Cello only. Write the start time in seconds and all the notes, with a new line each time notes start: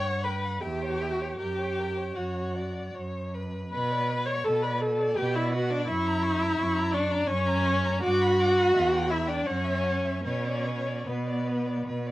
Already playing: G2
0.62 E2
1.39 F#2
2.16 F#2
2.94 F#2
3.72 B2
4.46 B2
5.17 B2
5.89 F#2
6.58 F#2
7.28 F#2
8.04 G2
8.75 E2
9.47 F#2
10.25 B2
11.07 B2
11.87 B2